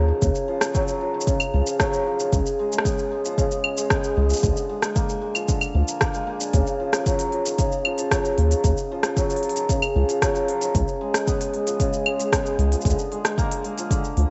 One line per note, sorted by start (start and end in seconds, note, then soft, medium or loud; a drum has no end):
0.00 0.12 D#2 medium
0.00 0.14 C#3 medium
0.00 0.14 F3 medium
0.00 0.14 F#3 medium
0.00 1.88 A#3 medium
0.08 0.27 D#3 medium
0.21 0.30 D#2 loud
0.21 1.19 C#3 medium
0.21 kick loud
0.21 shaker medium
0.35 shaker soft
0.48 0.60 F3 medium
0.61 1.00 F3 medium
0.61 cross-stick medium
0.61 shaker medium
0.75 1.19 F#3 loud
0.75 kick loud
0.75 shaker medium
0.88 shaker soft
1.01 1.19 F3 medium
1.14 1.33 D#3 medium
1.21 shaker medium
1.27 2.25 C#3 medium
1.27 kick loud
1.27 shaker medium
1.40 claves medium
1.40 shaker soft
1.54 1.62 C#2 medium
1.54 1.66 F3 medium
1.67 2.05 F3 medium
1.67 shaker medium
1.80 2.25 F#3 medium
1.80 kick loud
1.80 cross-stick medium
1.80 shaker medium
1.93 shaker soft
2.06 2.25 F3 medium
2.19 2.38 D#3 medium
2.19 shaker medium
2.33 2.41 C#2 medium
2.33 3.37 C#3 medium
2.33 kick loud
2.33 shaker medium
2.46 shaker soft
2.59 2.71 G#3 medium
2.72 3.10 G#3 medium
2.72 shaker medium
2.78 cross-stick medium
2.85 3.90 B3 medium
2.85 kick loud
2.85 shaker medium
2.99 shaker soft
3.12 3.63 G#3 medium
3.25 3.43 F3 medium
3.25 shaker medium
3.38 4.48 C#3 medium
3.38 kick loud
3.38 shaker medium
3.51 shaker soft
3.64 3.76 G#3 medium
3.64 claves medium
3.77 4.16 G#3 medium
3.77 shaker medium
3.90 5.01 B3 medium
3.90 kick loud
3.90 cross-stick medium
3.90 shaker medium
4.04 shaker soft
4.17 4.33 C#2 medium
4.17 4.48 G#3 medium
4.30 4.48 F3 medium
4.30 shaker medium
4.33 shaker medium
4.37 shaker soft
4.40 5.47 D3 medium
4.40 shaker soft
4.43 4.51 D2 medium
4.43 kick loud
4.43 shaker medium
4.57 shaker soft
4.69 4.81 G#3 medium
4.82 5.20 G#3 medium
4.82 cross-stick medium
4.82 shaker medium
4.95 5.88 A#3 medium
4.95 kick loud
4.95 shaker medium
5.09 shaker soft
5.21 5.54 G#3 medium
5.35 5.54 F3 medium
5.35 claves medium
5.35 shaker medium
5.48 6.59 D3 medium
5.48 kick loud
5.48 shaker medium
5.61 claves medium
5.61 shaker soft
5.75 5.83 D2 medium
5.75 6.59 F3 medium
5.88 6.01 A#3 medium
5.88 shaker medium
6.01 6.26 A#3 medium
6.01 kick loud
6.01 cross-stick medium
6.01 shaker medium
6.14 6.59 G#3 medium
6.14 shaker soft
6.27 10.55 A#3 medium
6.40 6.59 D4 medium
6.40 shaker medium
6.53 6.62 D#2 loud
6.53 7.51 C#3 medium
6.53 kick loud
6.53 open hi-hat medium
6.53 shaker medium
6.67 shaker soft
6.80 6.92 F3 medium
6.93 7.32 F3 medium
6.93 cross-stick medium
6.93 open hi-hat soft
6.93 shaker medium
7.06 7.51 F#3 medium
7.06 kick loud
7.06 shaker soft
7.19 open hi-hat soft
7.19 shaker soft
7.32 7.51 F3 medium
7.32 open hi-hat soft
7.45 7.64 D#3 medium
7.45 open hi-hat soft
7.45 shaker medium
7.58 8.56 C#3 medium
7.58 kick loud
7.58 open hi-hat soft
7.58 shaker medium
7.72 shaker soft
7.85 7.98 F3 medium
7.85 claves medium
7.98 8.37 F3 medium
7.98 open hi-hat soft
7.98 shaker medium
8.11 8.56 F#3 medium
8.11 kick loud
8.11 cross-stick medium
8.11 open hi-hat soft
8.11 shaker medium
8.25 shaker soft
8.38 8.54 D#2 medium
8.38 8.56 F3 medium
8.38 open hi-hat soft
8.51 8.69 D#3 medium
8.51 open hi-hat soft
8.51 shaker medium
8.64 8.72 D#2 medium
8.64 9.62 C#3 medium
8.64 kick loud
8.64 open hi-hat medium
8.64 shaker medium
8.77 shaker soft
8.92 9.03 F3 medium
9.03 9.43 F3 medium
9.03 cross-stick medium
9.03 open hi-hat soft
9.03 shaker medium
9.17 9.62 F#3 medium
9.17 kick medium
9.17 shaker medium
9.30 open hi-hat soft
9.30 shaker soft
9.36 open hi-hat soft
9.43 9.62 F3 medium
9.43 open hi-hat soft
9.50 open hi-hat soft
9.56 9.75 D#3 medium
9.56 open hi-hat soft
9.56 shaker medium
9.69 10.67 C#3 medium
9.69 kick medium
9.69 open hi-hat medium
9.69 shaker medium
9.82 claves medium
9.82 shaker soft
9.96 10.04 C#2 loud
9.96 10.08 F3 medium
10.09 10.48 F3 medium
10.09 open hi-hat soft
10.09 shaker medium
10.22 10.67 F#3 medium
10.22 kick loud
10.22 cross-stick medium
10.22 open hi-hat medium
10.22 shaker soft
10.36 shaker soft
10.48 10.67 F3 medium
10.48 open hi-hat soft
10.61 10.80 D#3 medium
10.61 open hi-hat soft
10.61 shaker medium
10.75 10.83 C#2 medium
10.75 11.79 C#3 medium
10.75 kick loud
10.75 open hi-hat medium
10.75 shaker medium
10.88 shaker soft
11.01 11.13 G#3 medium
11.14 11.52 G#3 medium
11.14 cross-stick medium
11.14 open hi-hat soft
11.14 shaker medium
11.27 12.32 B3 loud
11.27 kick medium
11.27 shaker soft
11.41 open hi-hat medium
11.41 shaker soft
11.53 12.05 G#3 medium
11.53 open hi-hat soft
11.67 11.85 F3 medium
11.67 open hi-hat soft
11.67 shaker medium
11.80 12.90 C#3 medium
11.80 kick medium
11.80 open hi-hat medium
11.80 shaker soft
11.93 shaker soft
12.06 12.18 G#3 medium
12.06 claves medium
12.19 12.58 G#3 medium
12.19 open hi-hat soft
12.19 shaker medium
12.32 13.44 B3 medium
12.32 kick loud
12.32 cross-stick medium
12.32 open hi-hat medium
12.32 shaker medium
12.46 shaker soft
12.59 12.75 C#2 medium
12.59 12.90 G#3 medium
12.59 open hi-hat soft
12.72 12.90 F3 medium
12.72 open hi-hat soft
12.72 shaker soft
12.81 12.93 D2 medium
12.81 kick loud
12.81 open hi-hat medium
12.81 shaker soft
12.86 13.90 D3 medium
12.86 shaker medium
12.90 shaker soft
12.99 shaker soft
13.12 13.24 G#3 medium
13.12 open hi-hat soft
13.25 13.64 G#3 medium
13.25 cross-stick medium
13.25 open hi-hat soft
13.25 shaker medium
13.38 14.30 A#3 loud
13.38 kick loud
13.38 shaker soft
13.51 open hi-hat medium
13.51 shaker soft
13.64 13.96 G#3 medium
13.64 open hi-hat soft
13.78 13.96 F3 medium
13.78 open hi-hat soft
13.78 shaker medium
13.91 14.30 D3 medium
13.91 kick medium
13.91 open hi-hat medium
13.91 shaker medium
14.04 shaker soft
14.17 14.25 D2 medium
14.17 14.30 F3 medium
14.17 open hi-hat soft